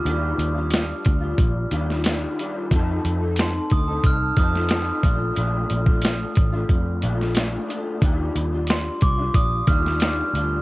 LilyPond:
<<
  \new Staff \with { instrumentName = "Glockenspiel" } { \time 4/4 \key ees \lydian \tempo 4 = 90 r1 | r4 c'''8 ees'''8 f'''8 ees'''4 r8 | r1 | r4 c'''8 d'''8 ees'''8 f'''4 r8 | }
  \new Staff \with { instrumentName = "Clean electric guitar" } { \time 4/4 \key ees \lydian <ees g d' f'>8. <g d' f'>4 <g d' f'>8. <ees g d' f'>8 <ees g d' f'>8 <ees g d' f'>8 | <f c' ees' a'>8. <c' ees' a'>4 <c' ees' a'>8. <f c' ees' a'>8 <f c' ees' a'>8 <bes, a d' f'>8 | <bes, a d' f'>8. <a d' f'>4 <a d' f'>8. <bes, a d' f'>8 <bes, a d' f'>8 <bes, a d' f'>8 | <ees g d' f'>8. <g d' f'>4 <g d' f'>8. <ees g d' f'>8 <ees g d' f'>8 <g d' f'>8 | }
  \new Staff \with { instrumentName = "Picked electric bass" } { \clef bass \time 4/4 \key ees \lydian ees,8 ees,4 d,8 bes,,8 ees,4 r8 | f,8 f,4 d,8 c,8 f,4 bes,,8 | bes,,8 bes,,4 a,,8 f,8 bes,,4 r8 | ees,8 ees,4 c,8 bes,,8 ees,4 d,8 | }
  \new DrumStaff \with { instrumentName = "Drums" } \drummode { \time 4/4 hh8 hh8 <hh sn>8 <hh bd>8 <hh bd>8 hh16 sn16 <hh sn>8 hh8 | <hh bd>8 hh8 <hh sn>8 <hh bd>8 <hh bd>8 <hh bd>16 sn16 <hh sn>8 <hh bd>8 | hh8 hh16 bd16 <hh sn>8 <hh bd>8 <hh bd>8 hh16 sn16 <hh sn>8 hh8 | <hh bd>8 hh8 <hh sn>8 <hh bd>8 <hh bd>8 <hh bd>16 sn16 <hh sn>8 hh8 | }
>>